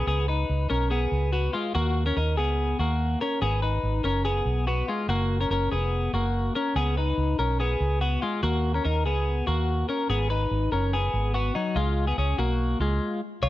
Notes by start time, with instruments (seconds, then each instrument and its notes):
0.07 fingered electric bass C#2, clean electric guitar B3 G#4
0.28 clean electric guitar D#4 B4
0.50 fingered electric bass C#2
0.70 fingered electric bass B1, clean electric guitar C#4 A#4
0.91 clean electric guitar B3 G#4
1.12 fingered electric bass C#2
1.33 clean electric guitar B3 F#4
1.53 clean electric guitar G#3 F4
1.75 fingered electric bass D#2, clean electric guitar A#3 F#4
2.06 clean electric guitar C#4 A#4
2.17 fingered electric bass D#2, clean electric guitar D#4 A#4
2.37 fingered electric bass C#2, clean electric guitar B3 G#4
2.79 fingered electric bass D#2, clean electric guitar A#3 F#4
3.21 clean electric guitar C#4 A#4
3.42 fingered electric bass G#1, clean electric guitar B3 G#4
3.62 clean electric guitar D#4 B4
3.83 fingered electric bass G#1
4.04 fingered electric bass F#1, clean electric guitar C#4 A#4
4.25 clean electric guitar B3 G#4
4.45 fingered electric bass B1
4.67 clean electric guitar B3 F#4
4.88 clean electric guitar G#3 F4
5.08 fingered electric bass F#1, clean electric guitar A#3 F#4
5.41 clean electric guitar C#4 A#4
5.50 fingered electric bass F#1, clean electric guitar C#4 A#4
5.72 fingered electric bass F1, clean electric guitar B3 G#4
6.13 fingered electric bass F#1, clean electric guitar A#3 F#4
6.55 clean electric guitar C#4 A#4
6.76 fingered electric bass C#2, clean electric guitar B3 G#4
6.97 clean electric guitar D#4 B4
7.18 fingered electric bass C#2
7.39 fingered electric bass B1, clean electric guitar C#4 A#4
7.60 clean electric guitar B3 G#4
7.80 fingered electric bass C#2
8.01 clean electric guitar B3 F#4
8.22 clean electric guitar G#3 F4
8.43 fingered electric bass D#2, clean electric guitar A#3 F#4
8.74 clean electric guitar C#4 A#4
8.85 fingered electric bass D#2, clean electric guitar D#4 A#4
9.06 fingered electric bass C#2, clean electric guitar B3 G#4
9.47 fingered electric bass D#2, clean electric guitar A#3 F#4
9.89 clean electric guitar C#4 A#4
10.09 fingered electric bass G#1, clean electric guitar B3 G#4
10.30 clean electric guitar D#4 B4
10.51 fingered electric bass G#1
10.72 fingered electric bass F#1, clean electric guitar C#4 A#4
10.93 clean electric guitar B3 G#4
11.14 fingered electric bass G#1
11.34 clean electric guitar B3 F#4
11.55 clean electric guitar F#3 D#4
11.76 fingered electric bass C#2, clean electric guitar G#3 F4
12.07 clean electric guitar B3 G#4
12.18 fingered electric bass C#2, clean electric guitar C#4 G#4
12.38 fingered electric bass B1, clean electric guitar A#3 F#4
12.80 fingered electric bass C#2, clean electric guitar G#3 F4
13.42 fingered electric bass C#2, clean electric guitar F4 C#5